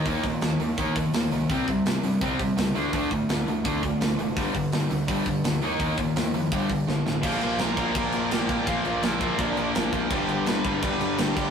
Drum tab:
CC |--------|--------|--------|--------|
HH |oooooooo|oooooooo|oooooooo|oooooooo|
SD |--o---o-|--o---o-|--o---o-|--o---o-|
BD |oo--oo--|oo--oo--|oo--oo--|oo--oo--|

CC |--------|xxxxxxxx|xxxxxxxx|xxxxxxxx|
HH |oooooo--|--------|--------|--------|
SD |--o---oo|--o---o-|--o---o-|--o---o-|
BD |oo--oo--|o--oo--o|o--oo--o|o--oo--o|